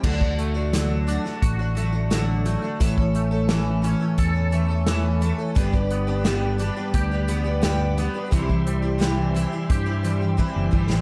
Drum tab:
CC |x---------------|----------------|----------------|----------------|
HH |--x-x-x-x-x-x-x-|x-x-x-x-x-x-x-x-|x-x-x-x-x-x-x-x-|x-x-x-x-x-x-----|
SD |----o--o----o---|----o-------o---|----o-------o---|----o----------o|
BD |oo------o-------|oo------o-------|oo------o-------|oo------o---o-o-|